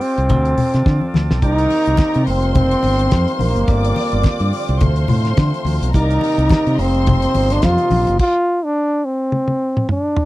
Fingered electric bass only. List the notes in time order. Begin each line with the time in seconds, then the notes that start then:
0.18 C2
0.30 D2
0.74 C3
0.86 D3
1.15 D2
1.31 B1
1.42 C2
1.87 C2
1.99 muted fingered electric bass stroke
2.16 C3
2.27 F1
2.84 G1
3.12 F2
3.39 A#1
3.55 F#1
3.68 G1
4.13 G1
4.25 muted fingered electric bass stroke
4.40 G2
4.69 C2
4.81 D2
5.09 A2
5.38 D3
5.65 D2
5.82 B1
5.94 C2
6.38 C2
6.66 C3
6.78 F1
7.35 G1
7.63 F2
7.92 A#1
8.08 F#1